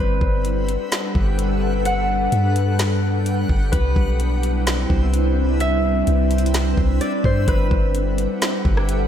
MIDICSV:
0, 0, Header, 1, 6, 480
1, 0, Start_track
1, 0, Key_signature, 1, "major"
1, 0, Tempo, 468750
1, 1898, Time_signature, 4, 2, 24, 8
1, 9294, End_track
2, 0, Start_track
2, 0, Title_t, "Harp"
2, 0, Program_c, 0, 46
2, 0, Note_on_c, 0, 71, 99
2, 0, Note_on_c, 0, 74, 71
2, 1389, Note_off_c, 0, 74, 0
2, 1900, Note_on_c, 0, 78, 95
2, 2080, Note_off_c, 0, 71, 0
2, 3547, Note_off_c, 0, 78, 0
2, 3809, Note_on_c, 0, 71, 93
2, 5740, Note_on_c, 0, 76, 94
2, 5907, Note_off_c, 0, 71, 0
2, 7178, Note_on_c, 0, 74, 69
2, 7426, Note_on_c, 0, 72, 73
2, 7504, Note_off_c, 0, 76, 0
2, 7663, Note_on_c, 0, 71, 100
2, 7724, Note_off_c, 0, 72, 0
2, 9069, Note_off_c, 0, 74, 0
2, 9294, Note_off_c, 0, 71, 0
2, 9294, End_track
3, 0, Start_track
3, 0, Title_t, "Synth texture"
3, 0, Program_c, 1, 99
3, 0, Note_on_c, 1, 59, 79
3, 0, Note_on_c, 1, 67, 71
3, 0, Note_on_c, 1, 78, 87
3, 3778, Note_off_c, 1, 59, 0
3, 3778, Note_off_c, 1, 67, 0
3, 3780, Note_off_c, 1, 78, 0
3, 3819, Note_on_c, 1, 60, 78
3, 3819, Note_on_c, 1, 71, 74
3, 3820, Note_on_c, 1, 76, 88
3, 7620, Note_off_c, 1, 60, 0
3, 7620, Note_off_c, 1, 71, 0
3, 7621, Note_off_c, 1, 76, 0
3, 7657, Note_on_c, 1, 67, 75
3, 7658, Note_on_c, 1, 78, 86
3, 7659, Note_on_c, 1, 59, 79
3, 9294, Note_off_c, 1, 59, 0
3, 9294, Note_off_c, 1, 67, 0
3, 9294, Note_off_c, 1, 78, 0
3, 9294, End_track
4, 0, Start_track
4, 0, Title_t, "Ambient pad"
4, 0, Program_c, 2, 92
4, 0, Note_on_c, 2, 55, 80
4, 0, Note_on_c, 2, 62, 77
4, 0, Note_on_c, 2, 69, 79
4, 0, Note_on_c, 2, 71, 90
4, 0, Note_on_c, 2, 78, 75
4, 3778, Note_off_c, 2, 69, 0
4, 3779, Note_off_c, 2, 55, 0
4, 3779, Note_off_c, 2, 62, 0
4, 3779, Note_off_c, 2, 71, 0
4, 3779, Note_off_c, 2, 78, 0
4, 3816, Note_on_c, 2, 62, 79
4, 3817, Note_on_c, 2, 55, 78
4, 3817, Note_on_c, 2, 71, 75
4, 3818, Note_on_c, 2, 60, 86
4, 3818, Note_on_c, 2, 64, 90
4, 7619, Note_off_c, 2, 55, 0
4, 7619, Note_off_c, 2, 62, 0
4, 7619, Note_off_c, 2, 71, 0
4, 7620, Note_off_c, 2, 60, 0
4, 7620, Note_off_c, 2, 64, 0
4, 7656, Note_on_c, 2, 71, 94
4, 7657, Note_on_c, 2, 69, 79
4, 7657, Note_on_c, 2, 78, 83
4, 7658, Note_on_c, 2, 55, 86
4, 7658, Note_on_c, 2, 62, 75
4, 9294, Note_off_c, 2, 55, 0
4, 9294, Note_off_c, 2, 62, 0
4, 9294, Note_off_c, 2, 69, 0
4, 9294, Note_off_c, 2, 71, 0
4, 9294, Note_off_c, 2, 78, 0
4, 9294, End_track
5, 0, Start_track
5, 0, Title_t, "808-style bass"
5, 0, Program_c, 3, 38
5, 0, Note_on_c, 3, 31, 119
5, 209, Note_off_c, 3, 31, 0
5, 218, Note_on_c, 3, 31, 102
5, 794, Note_off_c, 3, 31, 0
5, 1179, Note_on_c, 3, 31, 107
5, 2338, Note_off_c, 3, 31, 0
5, 2379, Note_on_c, 3, 43, 106
5, 3538, Note_off_c, 3, 43, 0
5, 3577, Note_on_c, 3, 31, 99
5, 3808, Note_off_c, 3, 31, 0
5, 3818, Note_on_c, 3, 36, 113
5, 4048, Note_off_c, 3, 36, 0
5, 4056, Note_on_c, 3, 35, 100
5, 4979, Note_off_c, 3, 35, 0
5, 5017, Note_on_c, 3, 36, 108
5, 6177, Note_off_c, 3, 36, 0
5, 6219, Note_on_c, 3, 36, 105
5, 6910, Note_off_c, 3, 36, 0
5, 6937, Note_on_c, 3, 36, 107
5, 7168, Note_off_c, 3, 36, 0
5, 7417, Note_on_c, 3, 43, 101
5, 7648, Note_off_c, 3, 43, 0
5, 7657, Note_on_c, 3, 31, 117
5, 7888, Note_off_c, 3, 31, 0
5, 7897, Note_on_c, 3, 31, 104
5, 8473, Note_off_c, 3, 31, 0
5, 8858, Note_on_c, 3, 31, 104
5, 9294, Note_off_c, 3, 31, 0
5, 9294, End_track
6, 0, Start_track
6, 0, Title_t, "Drums"
6, 218, Note_on_c, 9, 36, 89
6, 320, Note_off_c, 9, 36, 0
6, 457, Note_on_c, 9, 42, 66
6, 560, Note_off_c, 9, 42, 0
6, 702, Note_on_c, 9, 42, 75
6, 804, Note_off_c, 9, 42, 0
6, 940, Note_on_c, 9, 42, 72
6, 944, Note_on_c, 9, 38, 104
6, 1043, Note_off_c, 9, 42, 0
6, 1046, Note_off_c, 9, 38, 0
6, 1179, Note_on_c, 9, 36, 95
6, 1281, Note_off_c, 9, 36, 0
6, 1421, Note_on_c, 9, 42, 81
6, 1523, Note_off_c, 9, 42, 0
6, 1898, Note_on_c, 9, 42, 84
6, 2001, Note_off_c, 9, 42, 0
6, 2378, Note_on_c, 9, 42, 68
6, 2480, Note_off_c, 9, 42, 0
6, 2620, Note_on_c, 9, 42, 78
6, 2722, Note_off_c, 9, 42, 0
6, 2858, Note_on_c, 9, 42, 71
6, 2862, Note_on_c, 9, 38, 108
6, 2960, Note_off_c, 9, 42, 0
6, 2964, Note_off_c, 9, 38, 0
6, 3339, Note_on_c, 9, 42, 78
6, 3441, Note_off_c, 9, 42, 0
6, 3577, Note_on_c, 9, 36, 83
6, 3680, Note_off_c, 9, 36, 0
6, 3817, Note_on_c, 9, 42, 88
6, 3818, Note_on_c, 9, 36, 108
6, 3919, Note_off_c, 9, 42, 0
6, 3920, Note_off_c, 9, 36, 0
6, 4057, Note_on_c, 9, 36, 87
6, 4159, Note_off_c, 9, 36, 0
6, 4297, Note_on_c, 9, 42, 67
6, 4400, Note_off_c, 9, 42, 0
6, 4540, Note_on_c, 9, 42, 70
6, 4643, Note_off_c, 9, 42, 0
6, 4780, Note_on_c, 9, 42, 71
6, 4783, Note_on_c, 9, 38, 106
6, 4882, Note_off_c, 9, 42, 0
6, 4886, Note_off_c, 9, 38, 0
6, 5018, Note_on_c, 9, 36, 89
6, 5120, Note_off_c, 9, 36, 0
6, 5259, Note_on_c, 9, 42, 81
6, 5361, Note_off_c, 9, 42, 0
6, 5738, Note_on_c, 9, 42, 80
6, 5841, Note_off_c, 9, 42, 0
6, 6217, Note_on_c, 9, 42, 64
6, 6319, Note_off_c, 9, 42, 0
6, 6458, Note_on_c, 9, 42, 63
6, 6537, Note_off_c, 9, 42, 0
6, 6537, Note_on_c, 9, 42, 64
6, 6617, Note_off_c, 9, 42, 0
6, 6617, Note_on_c, 9, 42, 67
6, 6698, Note_off_c, 9, 42, 0
6, 6698, Note_on_c, 9, 42, 69
6, 6702, Note_on_c, 9, 38, 109
6, 6800, Note_off_c, 9, 42, 0
6, 6804, Note_off_c, 9, 38, 0
6, 6937, Note_on_c, 9, 36, 92
6, 7040, Note_off_c, 9, 36, 0
6, 7178, Note_on_c, 9, 42, 78
6, 7280, Note_off_c, 9, 42, 0
6, 7417, Note_on_c, 9, 36, 83
6, 7519, Note_off_c, 9, 36, 0
6, 7657, Note_on_c, 9, 42, 86
6, 7658, Note_on_c, 9, 36, 111
6, 7759, Note_off_c, 9, 42, 0
6, 7760, Note_off_c, 9, 36, 0
6, 7897, Note_on_c, 9, 36, 95
6, 7999, Note_off_c, 9, 36, 0
6, 8137, Note_on_c, 9, 42, 68
6, 8239, Note_off_c, 9, 42, 0
6, 8379, Note_on_c, 9, 42, 76
6, 8481, Note_off_c, 9, 42, 0
6, 8619, Note_on_c, 9, 42, 77
6, 8623, Note_on_c, 9, 38, 108
6, 8722, Note_off_c, 9, 42, 0
6, 8726, Note_off_c, 9, 38, 0
6, 8858, Note_on_c, 9, 36, 97
6, 8961, Note_off_c, 9, 36, 0
6, 8984, Note_on_c, 9, 37, 94
6, 9086, Note_off_c, 9, 37, 0
6, 9100, Note_on_c, 9, 42, 84
6, 9203, Note_off_c, 9, 42, 0
6, 9294, End_track
0, 0, End_of_file